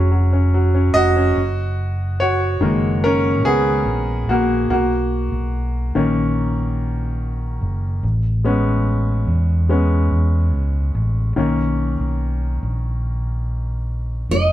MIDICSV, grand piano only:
0, 0, Header, 1, 2, 480
1, 0, Start_track
1, 0, Key_signature, 6, "major"
1, 0, Tempo, 833333
1, 786, Time_signature, 4, 2, 24, 8
1, 8366, End_track
2, 0, Start_track
2, 0, Title_t, "Grand piano"
2, 0, Program_c, 0, 0
2, 0, Control_c, 0, 64, 127
2, 0, Note_on_c, 0, 54, 74
2, 0, Note_on_c, 0, 61, 52
2, 58, Note_off_c, 0, 54, 0
2, 67, Note_on_c, 0, 54, 56
2, 181, Note_off_c, 0, 61, 0
2, 190, Note_on_c, 0, 61, 54
2, 303, Note_off_c, 0, 54, 0
2, 312, Note_on_c, 0, 54, 66
2, 421, Note_off_c, 0, 61, 0
2, 429, Note_on_c, 0, 61, 54
2, 537, Note_off_c, 0, 54, 0
2, 540, Note_on_c, 0, 75, 110
2, 545, Note_on_c, 0, 54, 64
2, 552, Note_on_c, 0, 66, 89
2, 662, Note_off_c, 0, 61, 0
2, 671, Note_on_c, 0, 61, 60
2, 779, Note_off_c, 0, 54, 0
2, 785, Note_off_c, 0, 61, 0
2, 792, Control_c, 0, 64, 0
2, 892, Control_c, 0, 64, 127
2, 1000, Note_off_c, 0, 75, 0
2, 1006, Note_off_c, 0, 66, 0
2, 1267, Note_on_c, 0, 73, 91
2, 1276, Note_on_c, 0, 66, 68
2, 1502, Note_on_c, 0, 51, 55
2, 1508, Note_on_c, 0, 56, 48
2, 1512, Note_on_c, 0, 58, 57
2, 1728, Note_off_c, 0, 66, 0
2, 1750, Note_on_c, 0, 70, 91
2, 1757, Note_on_c, 0, 61, 75
2, 1761, Note_off_c, 0, 73, 0
2, 1975, Note_off_c, 0, 61, 0
2, 1988, Note_on_c, 0, 68, 95
2, 1994, Note_on_c, 0, 59, 65
2, 1995, Note_off_c, 0, 70, 0
2, 2201, Note_off_c, 0, 51, 0
2, 2204, Note_off_c, 0, 56, 0
2, 2206, Note_off_c, 0, 58, 0
2, 2447, Note_off_c, 0, 59, 0
2, 2472, Note_on_c, 0, 66, 80
2, 2480, Note_on_c, 0, 58, 61
2, 2481, Note_off_c, 0, 68, 0
2, 2697, Note_off_c, 0, 58, 0
2, 2700, Note_off_c, 0, 66, 0
2, 2709, Note_on_c, 0, 66, 75
2, 2711, Note_on_c, 0, 58, 58
2, 2714, Control_c, 0, 64, 0
2, 2813, Control_c, 0, 64, 127
2, 3405, Note_off_c, 0, 66, 0
2, 3406, Note_off_c, 0, 58, 0
2, 3427, Note_on_c, 0, 51, 55
2, 3430, Note_on_c, 0, 58, 48
2, 3432, Note_on_c, 0, 61, 59
2, 3746, Note_off_c, 0, 51, 0
2, 3748, Note_off_c, 0, 58, 0
2, 3749, Note_off_c, 0, 61, 0
2, 4633, Control_c, 0, 64, 0
2, 4723, Control_c, 0, 64, 127
2, 4864, Note_on_c, 0, 56, 50
2, 4869, Note_on_c, 0, 59, 48
2, 4871, Note_on_c, 0, 61, 60
2, 5184, Note_off_c, 0, 56, 0
2, 5187, Note_off_c, 0, 59, 0
2, 5188, Note_off_c, 0, 61, 0
2, 5583, Note_on_c, 0, 56, 47
2, 5587, Note_on_c, 0, 59, 42
2, 5589, Note_on_c, 0, 61, 54
2, 5802, Note_off_c, 0, 56, 0
2, 5804, Note_off_c, 0, 59, 0
2, 5805, Note_off_c, 0, 61, 0
2, 6544, Note_on_c, 0, 51, 53
2, 6548, Note_on_c, 0, 58, 50
2, 6551, Note_on_c, 0, 61, 58
2, 6553, Control_c, 0, 64, 0
2, 6666, Control_c, 0, 64, 127
2, 6865, Note_off_c, 0, 51, 0
2, 6866, Note_off_c, 0, 58, 0
2, 6868, Note_off_c, 0, 61, 0
2, 8366, End_track
0, 0, End_of_file